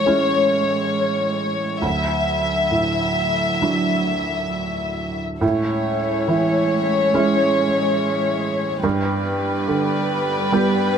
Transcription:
Already playing: A2 E3 G#3 C#5
0.06 G#3 C#4 E4
1.80 D2 F#3 E5
2.71 A2
3.62 F#3 D4 E4
5.41 A2 G#3 C#4 G#4 C#5 E5
6.28 E3
7.14 G#3 C#4 E4
8.83 G2 G3 B3 G4 B4 D5
9.68 D3
10.52 G3 B3 G4

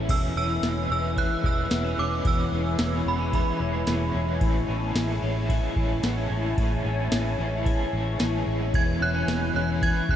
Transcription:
Already playing: E3 C#4 E4
0.08 E1 E2 B2 E3 G#3 C#4 E4 B4 C#5 G#5 E6, kick, crash, ride
0.35 E1 G#3 C#4 E4 E6
0.39 E3
0.62 E1 E2 B2 E3 G#3 C#4 E4, snare, ride, tambourine
0.89 E1 G#3 C#4 E4 E6
0.93 E3
1.16 E3 G#3 C#4 F#6, kick, ride
1.20 E4
1.42 E1 G#3 C#4 E4 E6, kick
1.47 E3
1.69 E1 E2 B2 E3 G#3 B3 C#4 E4, snare, ride, tambourine
1.84 C#4
1.96 E1 G#3 C#4 E4 D6
2.01 E3
2.24 E1 E2 B2 E3 G#3 C#4 E4 E6, kick, ride
2.50 E1 G#3 C#4 E4
2.55 E3
2.78 E1 E2 B2 E3 G#3 C#4 E4, snare, ride, tambourine
3.05 E1 G#3 B3 C#4 E4 B5
3.10 E3
3.19 C#4
3.32 E3 G#3 C#4 E4 B5, kick, ride
3.37 E4
3.59 E1 G#3 C#4 E4
3.64 E3
3.86 E1 E2 B2 E3 G#3 C#4 E4, snare, ride, tambourine
4.13 E1 G#3 C#4 E4
4.18 E3
4.40 A1 A2 E3 G#3 C#4 E4 A5, kick, ride
4.67 A1 C#4 E4
4.72 G#3
4.94 A1 A2 E3 G#3 C#4 E4, snare, ride, tambourine
5.20 A1 C#4 E4
5.26 G#3
5.48 E3 G#3 C#4, kick, ride
5.52 E4
5.75 A1 C#4 E4, kick
5.80 G#3
6.02 A1 A2 E3 G#3 B3 C#4 E4, snare, ride, tambourine
6.17 C#4
6.29 A1 C#4 E4
6.34 G#3
6.56 A1 A2 E3 G#3 C#4 E4, kick, ride
6.83 A1 C#4 E4
6.88 G#3
7.10 A1 A2 E3 G#3 C#4 E4, snare, ride, tambourine
7.37 A1 C#4 E4
7.42 G#3
7.65 E3 G#3 C#4, kick, ride
7.69 E4
7.91 A1 C#4 E4
7.96 G#3
8.19 A1 A2 E3 G#3 C#4 E4, snare, ride, tambourine
8.45 A1 C#4 E4
8.50 G#3
8.72 E1 E2 B2 E3 G#3 C#4 E4 B4 G#6, kick, ride
8.99 E1 G#3 B3 C#4 E4 F#6
9.04 E3
9.14 C#4
9.26 E1 E2 B2 E3 G#3 C#4 E4, snare, ride, tambourine
9.53 E1 G#3 C#4 E4 F#6
9.58 E3
9.80 E3 G#3 C#4 G#6, kick, ride
9.85 E4
10.07 E1 G#3 C#4 E4 F#6, kick
10.12 E3

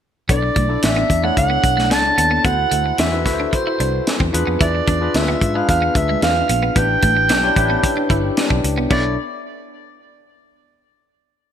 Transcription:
0.29 B1 B3 D4 E4 A4 D5, kick, closed hi-hat
0.43 muted clean electric guitar stroke
0.56 B1 A3, kick, closed hi-hat
0.69 D4 E4 A4 D5
0.82 A1 E5, snare, closed hi-hat
0.96 B3
1.10 E2, muted clean electric guitar stroke, kick, closed hi-hat
1.23 A3 D4 E4 A4 C#5 F#5
1.37 C#2 F#5, kick, closed hi-hat
1.50 B3
1.64 B1, muted clean electric guitar stroke, kick, closed hi-hat
1.77 A3, snare
1.90 C#2 A5, muted clean electric guitar stroke, snare, closed hi-hat
2.18 D#2 B3, closed hi-hat
2.31 B3
2.44 D2 B3 E4 F#4 A4 C5 F#5, kick, closed hi-hat
2.71 D2 A3, closed hi-hat
2.86 muted clean electric guitar stroke
2.98 E2 C4 E5, snare, closed hi-hat
3.12 E4 F#4 A4 B4
3.25 D2 E4 F#4 A4 B4, muted clean electric guitar stroke, kick, snare, closed hi-hat
3.33 C5
3.40 D4
3.53 C5, muted clean electric guitar stroke, kick, closed hi-hat
3.67 E4
3.80 C2 D4, closed hi-hat
4.07 snare, closed hi-hat
4.20 E2 C4, kick
4.33 E2 D4 F4 G#4 B4, muted clean electric guitar stroke, closed hi-hat
4.47 F2 B3
4.61 E2 E4 D5, kick, closed hi-hat
4.75 muted clean electric guitar stroke
4.87 E2 D4, kick, closed hi-hat
5.01 D4 F4 G#4 B4
5.14 D2 E5, snare, closed hi-hat
5.28 B3
5.41 G#2, muted clean electric guitar stroke, kick, closed hi-hat
5.54 G#3 D4 F4 G#4 B4 F5
5.69 E2 F5, kick, closed hi-hat
5.82 B3
5.95 D2 E5, muted clean electric guitar stroke, kick, closed hi-hat
6.09 G#3
6.22 E2 F5, muted clean electric guitar stroke, snare, closed hi-hat
6.49 A#1 B3, closed hi-hat
6.63 B3
6.76 A1 B3 D4 E4 G4 B4 G5, kick, closed hi-hat
7.02 A1 A3, kick, closed hi-hat
7.17 muted clean electric guitar stroke
7.29 B1 D4, snare, closed hi-hat
7.43 D4 E4 G4 C#5
7.56 A1 C#4 E4 G4 B4 A5, muted clean electric guitar stroke, kick, closed hi-hat
7.63 D4
7.70 B3
7.83 G5, muted clean electric guitar stroke, kick, closed hi-hat
7.97 D4
8.10 G1 E4, kick, closed hi-hat
8.37 D5, snare, closed hi-hat
8.50 B1 D4, kick
8.64 C#2, muted clean electric guitar stroke, closed hi-hat
8.78 C2 B3
8.91 B1 B3 D4 E4 A4 C#5 D5, kick, crash

